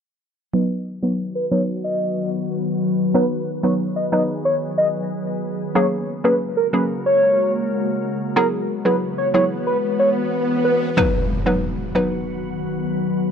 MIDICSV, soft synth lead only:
0, 0, Header, 1, 2, 480
1, 0, Start_track
1, 0, Key_signature, 5, "major"
1, 0, Tempo, 652174
1, 397, Time_signature, 4, 2, 24, 8
1, 9800, End_track
2, 0, Start_track
2, 0, Title_t, "Soft synth lead"
2, 0, Program_c, 0, 80
2, 395, Note_on_c, 0, 75, 104
2, 471, Note_off_c, 0, 75, 0
2, 754, Note_on_c, 0, 73, 73
2, 831, Note_off_c, 0, 73, 0
2, 995, Note_on_c, 0, 71, 81
2, 1071, Note_off_c, 0, 71, 0
2, 1114, Note_on_c, 0, 73, 80
2, 1191, Note_off_c, 0, 73, 0
2, 1355, Note_on_c, 0, 75, 102
2, 1694, Note_off_c, 0, 75, 0
2, 2316, Note_on_c, 0, 71, 106
2, 2392, Note_off_c, 0, 71, 0
2, 2675, Note_on_c, 0, 73, 72
2, 2751, Note_off_c, 0, 73, 0
2, 2915, Note_on_c, 0, 75, 73
2, 2991, Note_off_c, 0, 75, 0
2, 3035, Note_on_c, 0, 75, 86
2, 3112, Note_off_c, 0, 75, 0
2, 3276, Note_on_c, 0, 73, 88
2, 3352, Note_off_c, 0, 73, 0
2, 3516, Note_on_c, 0, 75, 78
2, 3592, Note_off_c, 0, 75, 0
2, 4236, Note_on_c, 0, 73, 95
2, 4312, Note_off_c, 0, 73, 0
2, 4595, Note_on_c, 0, 71, 75
2, 4672, Note_off_c, 0, 71, 0
2, 4835, Note_on_c, 0, 70, 76
2, 4911, Note_off_c, 0, 70, 0
2, 4955, Note_on_c, 0, 71, 80
2, 5032, Note_off_c, 0, 71, 0
2, 5196, Note_on_c, 0, 73, 100
2, 5535, Note_off_c, 0, 73, 0
2, 6156, Note_on_c, 0, 70, 106
2, 6232, Note_off_c, 0, 70, 0
2, 6516, Note_on_c, 0, 71, 83
2, 6592, Note_off_c, 0, 71, 0
2, 6756, Note_on_c, 0, 73, 82
2, 6833, Note_off_c, 0, 73, 0
2, 6875, Note_on_c, 0, 73, 80
2, 6952, Note_off_c, 0, 73, 0
2, 7115, Note_on_c, 0, 71, 88
2, 7192, Note_off_c, 0, 71, 0
2, 7356, Note_on_c, 0, 73, 83
2, 7432, Note_off_c, 0, 73, 0
2, 7835, Note_on_c, 0, 71, 74
2, 7912, Note_off_c, 0, 71, 0
2, 9800, End_track
0, 0, End_of_file